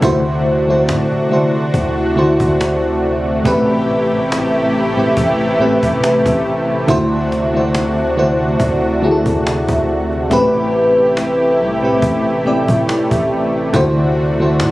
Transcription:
0.01 808-style bass D2, analog synth pad C3 A3 D4 F#4, fm electric piano D3 A3 E4 F#4 C5, cajon bass
0.26 cajon slap
0.46 cajon slap
0.67 fm electric piano D3 A3 E4 F#4 C5, cajon slap
0.89 808-style bass A2, cajon slap
1.12 cajon slap
1.30 fm electric piano D3 A3 E4 F#4 C5, cajon slap
1.54 cajon slap
1.74 808-style bass D2, cajon bass
1.97 cajon slap
2.16 fm electric piano D3 A3 E4 F#4 C5, cajon slap
2.40 808-style bass D2, cajon bass
2.61 cajon slap
2.83 cajon slap
3.44 808-style bass A1, fm electric piano A2 A3 C4 G4 B4, analog synth pad E4 G4, cajon bass
3.69 cajon slap
3.89 cajon slap
4.12 cajon slap
4.32 cajon slap
4.55 cajon slap
4.74 cajon slap
4.96 fm electric piano A2 A3 C4 G4 B4, cajon slap
5.17 808-style bass A1, cajon bass
5.40 cajon slap
5.59 fm electric piano A2 A3 C4 G4 B4, cajon slap
5.83 808-style bass A1, cajon bass
6.04 cajon slap
6.26 808-style bass A1, cajon bass
6.45 cajon slap
6.87 808-style bass D2, fm electric piano D3 A3 E4 F#4 C5, analog synth pad D4 F#4, cajon bass
7.12 cajon slap
7.32 cajon slap
7.54 fm electric piano D3 A3 E4 F#4 C5
7.75 cajon slap
7.97 cajon slap
8.16 fm electric piano D3 A3 E4 F#4 C5, cajon slap
8.40 cajon slap
8.60 808-style bass D2, cajon bass
8.83 cajon slap
9.01 fm electric piano D3 A3 E4 F#4 G#4, cajon slap
9.11 fm electric piano A4
9.26 808-style bass D2, cajon bass
9.47 cajon slap
9.69 808-style bass D2, cajon bass
9.88 cajon slap
10.00 cajon slap
10.11 cajon slap
10.21 cajon slap
10.30 808-style bass A1, fm electric piano A2 A3 C4 G4 B4, analog synth pad A3 E4 G4, cajon bass
10.54 cajon slap
10.74 cajon slap
10.97 cajon slap
11.17 cajon slap
11.40 cajon slap
11.59 808-style bass C2, cajon slap
11.82 fm electric piano A2 A3 C4 G4 B4, cajon slap
12.02 808-style bass A1, cajon bass
12.26 cajon slap
12.44 fm electric piano A2 A3 C4 G4 D5, cajon slap
12.68 808-style bass A2, cajon bass
12.89 cajon slap
13.11 808-style bass A1, cajon bass
13.31 cajon slap
13.73 808-style bass D2, analog synth pad C3 D4 F#4, fm electric piano D3 A3 E4 F#4 C5, cajon bass
13.97 cajon slap
14.17 cajon slap
14.39 fm electric piano D3 A3 E4 F#4 C5, cajon slap
14.60 808-style bass A2, cajon slap

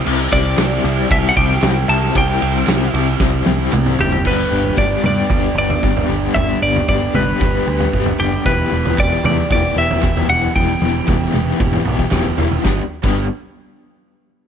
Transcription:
0.05 picked electric bass C2, overdriven electric guitar C3 G3 C4 E4, crash
0.31 picked electric bass C2, overdriven electric guitar C3 G3 C4 E4, clean electric guitar D5, kick, ride
0.57 picked electric bass C2, overdriven electric guitar C3 G3 C4 E4, snare, clap, ride
0.84 picked electric bass C2, overdriven electric guitar C3 G3 C4 E4, ride
1.09 picked electric bass C2, overdriven electric guitar C3 G3 C4 E4, clean electric guitar E5, kick, ride
1.29 clean electric guitar F#5
1.36 picked electric bass C2, overdriven electric guitar C3 G3 C4 E4, clean electric guitar G5, kick, ride
1.51 snare
1.61 picked electric bass C2, overdriven electric guitar C3 G3 C4 E4, snare, clap, ride
1.87 picked electric bass C2, overdriven electric guitar C3 G3 C4 E4, clean electric guitar A5, ride
2.03 snare
2.14 picked electric bass C2, overdriven electric guitar C3 G3 C4 E4, clean electric guitar G5, kick, ride
2.39 picked electric bass C2, overdriven electric guitar C3 G3 C4 E4, ride
2.66 picked electric bass C2, overdriven electric guitar C3 G3 C4 E4, snare, clap, ride
2.93 picked electric bass C2, overdriven electric guitar C3 G3 C4 E4, ride
3.20 picked electric bass C2, overdriven electric guitar C3 G3 C4 E4, kick, snare
3.46 picked electric bass C2, overdriven electric guitar C3 G3 C4 E4, high tom
3.73 picked electric bass C2, overdriven electric guitar C3 G3 C4 E4, clap, mid tom
3.86 mid tom
3.99 picked electric bass F#1, overdriven electric guitar C3 G3 C4 E4, clean electric guitar G4, floor tom
4.12 floor tom
4.25 picked electric bass G1, overdriven electric guitar G3 B3 D4 G4, clean electric guitar B4, kick, floor tom, crash
4.52 picked electric bass G1, overdriven electric guitar G3 B3 D4 G4
4.64 floor tom
4.76 picked electric bass G1, overdriven electric guitar G3 B3 D4 G4, clean electric guitar D5, kick
5.02 picked electric bass G2, overdriven electric guitar G3 B3 D4 G4, clean electric guitar D5, floor tom, mid tom
5.29 picked electric bass G1, overdriven electric guitar G3 B3 D4 G4, kick, floor tom
5.55 picked electric bass G1, overdriven electric guitar G3 B3 D4 G4, clean electric guitar D5
5.70 floor tom
5.83 picked electric bass G1, overdriven electric guitar G3 B3 D4 G4, kick
5.97 floor tom
6.09 picked electric bass G1, overdriven electric guitar G3 B3 D4 G4
6.35 picked electric bass G1, overdriven electric guitar G3 B3 D4 G4, clean electric guitar E5, kick, floor tom
6.62 picked electric bass G1, overdriven electric guitar G3 B3 D4 G4, clean electric guitar D5
6.76 floor tom
6.88 picked electric bass G1, overdriven electric guitar G3 B3 D4 G4, clean electric guitar D5, kick
7.14 picked electric bass G1, overdriven electric guitar G3 B3 D4 G4, clean electric guitar B4, floor tom, mid tom
7.40 picked electric bass G1, overdriven electric guitar G3 B3 D4 G4, kick, floor tom
7.67 picked electric bass D2, overdriven electric guitar G3 B3 D4 G4
7.80 floor tom
7.93 picked electric bass G1, overdriven electric guitar G3 B3 D4 G4, kick
8.06 floor tom
8.19 picked electric bass F#1, overdriven electric guitar G3 B3 D4 G4, clean electric guitar G4
8.45 picked electric bass E1, overdriven electric guitar E3 B3 E4 G4, clean electric guitar B4, kick, floor tom
8.71 picked electric bass E1, overdriven electric guitar E3 B3 E4 G4
8.85 floor tom
8.97 picked electric bass E1, overdriven electric guitar E3 B3 E4 G4, clean electric guitar D5, kick, clap
9.24 picked electric bass E2, overdriven electric guitar E3 B3 E4 G4, clean electric guitar D5, floor tom, mid tom
9.49 picked electric bass E1, overdriven electric guitar E3 B3 E4 G4, clean electric guitar D5, kick, floor tom
9.75 picked electric bass E1, overdriven electric guitar E3 B3 E4 G4, clean electric guitar E5
9.91 floor tom
10.02 picked electric bass E1, overdriven electric guitar E3 B3 E4 G4, kick, clap
10.17 floor tom
10.28 picked electric bass E1, overdriven electric guitar E3 B3 E4 G4, clean electric guitar F#5
10.54 picked electric bass E1, overdriven electric guitar E3 B3 E4 G4, clean electric guitar G5, kick, high tom
10.81 picked electric bass E1, overdriven electric guitar E3 B3 E4 G4, high tom
11.06 picked electric bass E1, overdriven electric guitar E3 B3 E4 G4, kick, clap, mid tom
11.33 picked electric bass E1, overdriven electric guitar E3 B3 E4 G4, clap, mid tom
11.60 picked electric bass E1, overdriven electric guitar E3 B3 E4 G4, kick, mid tom
11.73 mid tom
11.85 picked electric bass B1, overdriven electric guitar E3 B3 E4 G4, mid tom
11.99 kick
12.10 picked electric bass E1, overdriven electric guitar E3 B3 E4 G4, kick, snare, clap
12.24 floor tom
12.37 picked electric bass E1, overdriven electric guitar E3 B3 E4 G4, floor tom
12.51 floor tom
12.63 picked electric bass G1, overdriven electric guitar G2 D3 G3 B3 D4 G4, kick, snare, clap
13.03 picked electric bass G1, overdriven electric guitar G2 D3 G3 B3 D4 G4, kick, clap, crash

